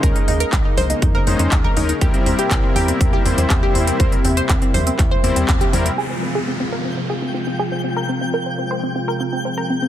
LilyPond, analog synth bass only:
\new Staff \with { instrumentName = "Analog synth bass" } { \clef bass \time 4/4 \key f \minor \tempo 4 = 121 ees,16 r16 ees,16 r16 des,16 r16 des,16 r16 f,16 r16 f,16 f,16 ees,16 r16 ees,16 r16 | e,16 r16 e,16 r16 c,16 r16 e,16 r16 e,16 r16 e,16 e,16 e,16 r16 e,16 r16 | e,16 r16 e,16 r16 e,16 r16 e,16 r16 e,16 r16 e,16 e,16 e,16 r16 e,16 r16 | r1 |
r1 | }